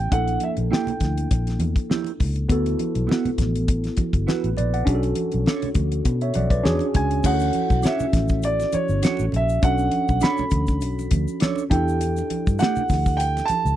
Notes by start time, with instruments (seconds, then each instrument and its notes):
Already playing: grand piano G5
0.10 fingered electric bass A#1, tine electric piano A3 D4 E4 A4, grand piano F#5, kick, closed hi-hat
0.17 tine electric piano A#3
0.28 closed hi-hat, muted conga
0.40 grand piano E5, closed hi-hat, high conga
0.57 fingered electric bass A#1, closed hi-hat, high conga
0.71 clean electric guitar A#3 E4 G4, grand piano G5, snare
0.87 muted fingered electric bass stroke, closed hi-hat, muted conga, low conga
1.00 fingered electric bass D2, kick, snare, closed hi-hat, high conga, low conga
1.18 closed hi-hat
1.31 fingered electric bass A#1, kick, closed hi-hat, muted conga
1.47 snare, closed hi-hat, muted conga
1.59 fingered electric bass E2, closed hi-hat, high conga
1.76 kick, closed hi-hat
1.90 clean electric guitar A#3 E4 G4, snare, muted conga, high conga
2.04 closed hi-hat, muted conga
2.20 fingered electric bass C#2, kick, open hi-hat, low conga
2.36 closed hi-hat
2.49 fingered electric bass D2, tine electric piano B3 E4 F#4 A4, kick, closed hi-hat, muted conga
2.66 closed hi-hat, muted conga
2.79 closed hi-hat, high conga
2.95 fingered electric bass B1, closed hi-hat, high conga
3.07 clean electric guitar B3 E4 F#4, muted conga
3.11 snare
3.25 muted fingered electric bass stroke, closed hi-hat, muted conga, low conga
3.38 fingered electric bass A1, kick, snare, closed hi-hat, high conga, low conga
3.56 closed hi-hat
3.68 kick, closed hi-hat, muted conga
3.84 snare, closed hi-hat, muted conga
3.97 muted fingered electric bass stroke, kick, closed hi-hat, high conga
4.13 fingered electric bass G1, kick, closed hi-hat
4.27 clean electric guitar B3 E4 F#4, tine electric piano B4, snare, high conga
4.44 fingered electric bass A1, closed hi-hat
4.57 fingered electric bass A#1, tine electric piano B4 D5, closed hi-hat, low conga
4.74 tine electric piano D5 F#5, closed hi-hat
4.85 fingered electric bass B1, tine electric piano C#4 D4 F#4 G#4, kick, closed hi-hat, muted conga
4.95 tine electric piano A4
5.03 closed hi-hat, muted conga
5.15 closed hi-hat, high conga
5.32 fingered electric bass B1, closed hi-hat, high conga
5.46 clean electric guitar D4 A4 C#5, snare, muted conga
5.62 muted fingered electric bass stroke, closed hi-hat, low conga
5.75 fingered electric bass D2, kick, closed hi-hat, high conga, low conga
5.92 closed hi-hat
6.05 fingered electric bass B2, kick, closed hi-hat, muted conga
6.21 tine electric piano C#5 E5, closed hi-hat
6.34 fingered electric bass B1, tine electric piano D5 F#5, closed hi-hat, high conga
6.50 tine electric piano B4 D5, kick, closed hi-hat
6.63 fingered electric bass E2, tine electric piano C#4 D4 F#4 G#4, clean electric guitar D4 G#4 C#5, snare, high conga
6.79 closed hi-hat, muted conga
6.94 fingered electric bass C#2, grand piano G#5, kick, closed hi-hat, low conga
7.11 closed hi-hat
7.24 fingered electric bass D2, tine electric piano C#4 E4 F#4 G#4, grand piano F#5, kick, crash, muted conga, shaker
7.34 tine electric piano A4
7.40 muted conga, shaker
7.53 closed hi-hat, high conga
7.70 fingered electric bass B1, kick, shaker
7.83 clean electric guitar D4 F#4 C#5, grand piano E5, snare, closed hi-hat, shaker
8.00 muted fingered electric bass stroke, muted conga, low conga, shaker
8.13 fingered electric bass A1, kick, snare, closed hi-hat, high conga, low conga, shaker
8.28 kick, shaker
8.42 grand piano D5, closed hi-hat, muted conga, shaker
8.60 snare, muted conga, shaker
8.72 grand piano C#5, muted fingered electric bass stroke, closed hi-hat, high conga, shaker
8.89 fingered electric bass G1, shaker
9.03 clean electric guitar D4 F#4 C#5, snare, closed hi-hat, muted conga, high conga, shaker
9.17 fingered electric bass A1, muted conga, shaker
9.32 fingered electric bass A#1, closed hi-hat, low conga
9.36 grand piano E5
9.49 shaker
9.62 fingered electric bass B1, tine electric piano C#4 D4 F#4 A4, grand piano F#5, kick, closed hi-hat, muted conga, shaker
9.78 muted conga, shaker
9.91 closed hi-hat, high conga
10.08 fingered electric bass B1, kick, shaker
10.21 clean electric guitar D4 A4 C#5, grand piano B5, snare, closed hi-hat, shaker
10.37 muted fingered electric bass stroke, muted conga, low conga, shaker
10.50 fingered electric bass D2, kick, closed hi-hat, high conga, low conga, shaker
10.67 kick, shaker
10.81 fingered electric bass B1, closed hi-hat, shaker
10.99 muted conga, shaker
11.11 fingered electric bass D2, kick, closed hi-hat, high conga, shaker
11.28 shaker
11.40 clean electric guitar D4 A4 C#5, snare, closed hi-hat, high conga, shaker
11.56 muted conga, shaker
11.70 fingered electric bass E2, tine electric piano D4 E4 G4 A4, grand piano G5, kick, closed hi-hat, low conga
11.88 shaker
12.01 closed hi-hat, muted conga, shaker
12.17 muted conga, shaker
12.30 closed hi-hat, high conga
12.47 fingered electric bass G2, kick, shaker
12.59 clean electric guitar A3 D4 G4, grand piano F#5, snare, closed hi-hat, muted conga, shaker
12.76 muted fingered electric bass stroke, low conga, shaker
12.89 fingered electric bass D2, kick, snare, open hi-hat, high conga, low conga, shaker
13.06 kick, shaker
13.17 grand piano G5, closed hi-hat, muted conga, shaker
13.37 snare, muted conga, shaker
13.45 grand piano A5, closed hi-hat, shaker
13.50 muted fingered electric bass stroke, high conga
13.65 fingered electric bass C#2, shaker